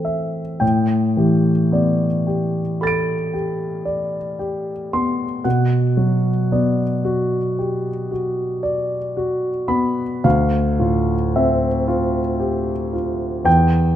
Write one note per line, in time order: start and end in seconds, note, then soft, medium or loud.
0.00 0.57 A2 soft
0.00 0.65 E3 soft
0.00 0.64 C4 soft
0.00 0.39 A4 soft
0.05 0.62 E5 soft
0.60 5.41 A2 soft
0.60 1.50 G5 soft
1.17 2.06 E3 soft
1.17 2.06 G4 soft
1.72 2.60 B3 soft
1.72 2.61 D5 soft
2.27 3.13 G4 soft
2.81 3.34 A4 soft
2.81 5.41 B5 soft
2.81 5.42 A6 soft
2.87 5.44 D7 soft
3.33 4.18 G4 soft
3.85 4.70 D5 soft
4.39 5.24 G4 soft
4.93 5.46 B3 soft
4.93 5.46 C6 medium
5.44 10.21 B2 soft
5.44 6.30 F#5 soft
5.97 6.83 F#3 soft
5.97 6.83 F#4 soft
6.52 7.37 B3 soft
6.52 7.37 D5 soft
7.04 7.89 F#4 soft
7.59 8.11 G4 soft
8.11 8.96 F#4 soft
8.63 9.49 D5 soft
9.17 10.03 F#4 soft
9.68 10.23 B3 soft
9.68 10.23 B5 medium
10.24 13.42 D2 soft
10.24 11.12 F5 medium
10.79 11.67 A2 soft
10.79 11.67 F4 soft
11.36 12.20 C4 soft
11.36 12.20 E5 soft
11.88 12.72 F4 soft
12.40 12.93 G4 soft
12.93 13.46 F4 soft
13.45 13.96 E2 soft
13.45 13.96 G5 medium